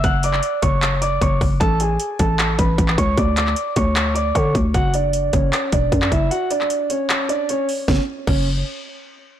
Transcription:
<<
  \new Staff \with { instrumentName = "Grand piano" } { \time 4/4 \key fis \minor \tempo 4 = 153 <fis'' fis'''>8 <d'' d'''>4 <cis'' cis'''>4 <d'' d'''>8 <cis'' cis'''>8 r8 | <a' a''>8 <gis' gis''>4 <a' a''>4 <b' b''>4 <cis'' cis'''>8 | <d'' d'''>8 <d'' d'''>4 <cis'' cis'''>4 <d'' d'''>8 <cis'' cis'''>8 r8 | <fis' fis''>8 <d' d''>4 <cis' cis''>4 <d' d''>4 <e' e''>8 |
<fis' fis''>8 <d' d''>4 <cis' cis''>4 <d' d''>8 <cis' cis''>8 r8 | cis'8 r8 cis'8 r2 r8 | }
  \new Staff \with { instrumentName = "808-style bass" } { \clef bass \time 4/4 \key fis \minor fis,,4 r8 fis,,4. fis,,8 fis,,8 | a,,4 r8 a,,4 a,,8 a,,8 cis,8 | d,4 r8 d,4. d8 d,8 | fis,,4. fis,,8 r8 e,,8 fis,8 fis,,8 |
r1 | fis,,8 r8 fis,,4 r2 | }
  \new DrumStaff \with { instrumentName = "Drums" } \drummode { \time 4/4 <hh bd>8 hh16 hc16 hh8 <hh bd>8 <hc hh>8 hh8 <hh bd>8 <hho bd>8 | <hh bd>8 hh8 hh8 <hh bd>8 <hc hh>8 <hh bd>8 <hh bd>16 hc16 <hh bd>8 | <hh bd>8 <hc hh>16 hc16 hh8 <hh bd>8 <hc hh>8 hh8 <hh bd>8 <hh bd>8 | <hh bd>8 hh8 hh8 <hh bd>8 <hc hh>8 <hh bd>8 <hh bd>16 hc16 <hh bd>8 |
hh8 hh16 hc16 hh8 hh8 <hc hh>8 hh8 hh8 hho8 | <bd sn>4 <cymc bd>4 r4 r4 | }
>>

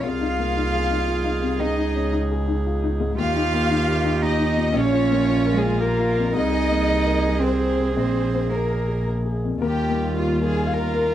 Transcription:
<<
  \new Staff \with { instrumentName = "Violin section" } { \time 3/4 \key ees \mixolydian \tempo 4 = 114 f''2. | ees''4 r2 | f''2 ees''4 | des''4. aes'8 bes'4 |
ees''2 c''4 | c''4 bes'4 r4 | g'4 f'8 aes'8 bes'4 | }
  \new Staff \with { instrumentName = "Viola" } { \time 3/4 \key ees \mixolydian aes'2.~ | aes'2. | g'2. | f'2. |
aes'2.~ | aes'2~ aes'8 r8 | f'2. | }
  \new Staff \with { instrumentName = "Upright piano" } { \time 3/4 \key ees \mixolydian << { r2. | r2. | r2. | r2. |
r2. | r2. | bes'2 f''4 | } \\ { \tuplet 3/2 { c,8 ees'8 bes8 ees'8 aes'8 ees'8 f'8 ees'8 c8 } | \tuplet 3/2 { des,8 ees'8 des'8 ees'8 aes'8 ees'8 f'8 ees'8 aes,8 } | \tuplet 3/2 { ees,8 ees'8 bes8 ees'8 g'8 ees'8 f'8 ees'8 bes,8 } | \tuplet 3/2 { bes,,8 f'8 bes8 f'8 bes'8 f'8 g'8 f'8 f,8 } |
\tuplet 3/2 { c,8 aes'8 bes8 aes'8 bes'8 aes'8 bes'8 aes'8 c8 } | \tuplet 3/2 { bes,,8 aes'8 bes8 aes'8 bes'8 aes'8 bes'8 aes'8 f,8 } | ees,8 bes8 g'8 bes'4 bes'8 | } >> }
  \new Staff \with { instrumentName = "Cello" } { \time 3/4 \key ees \mixolydian f'2. | ees'4 r2 | f'2 ees'4 | des'4. aes8 bes4 |
ees'2 c'4 | c'4 bes4 r4 | g2. | }
  \new Staff \with { instrumentName = "Double bass" } { \clef bass \time 3/4 \key ees \mixolydian c,2. | des,2. | ees,2. | bes,,2. |
c,2. | bes,,2. | ees,2. | }
>>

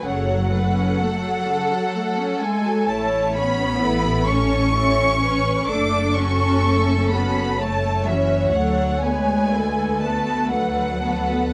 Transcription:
<<
  \new Staff \with { instrumentName = "Violin section" } { \time 3/4 \key fis \minor \tempo 4 = 63 fis''2~ fis''8 gis''8 | \key a \major a''8 b''4 cis'''4. | d'''8 cis'''4 b''8 a''8 e''8 | fis''8 gis''4 a''8 fis''4 | }
  \new Staff \with { instrumentName = "Violin section" } { \time 3/4 \key fis \minor cis''8 b'8 a'2 | \key a \major cis''4 b'8 a'8 cis''8 b'8 | a'2 cis''4~ | cis''4 b'8 a'8 b'8 a'8 | }
  \new Staff \with { instrumentName = "Viola section" } { \time 3/4 \key fis \minor << { a'2. | \key a \major a'8 cis''8 a'8 cis''8 a'8 cis''8 | a'8 fis'8 a'8 fis'8 a'8 fis'8 | a'8 b'8 a'8 b'8 a'8 b'8 | } \\ { cis16 fis16 a16 cis'16 a16 fis16 cis16 fis16 a16 cis'16 a16 fis16 | e'8 cis'8 e'8 cis'8 e'8 cis'8 | a8 cis'8 a8 cis'8 a8 cis'8 | a8 b8 a8 b8 a8 b8 | } >> }
  \new Staff \with { instrumentName = "Cello section" } { \time 3/4 \key fis \minor fis2~ fis8 gis8 | \key a \major a8 b4 cis'4. | d'8 cis'4 b8 a8 e8 | fis8 gis4 a8 fis4 | }
  \new Staff \with { instrumentName = "Double bass section" } { \clef bass \time 3/4 \key fis \minor fis,,4 r2 | \key a \major a,,2. | fis,,2. | d,2. | }
>>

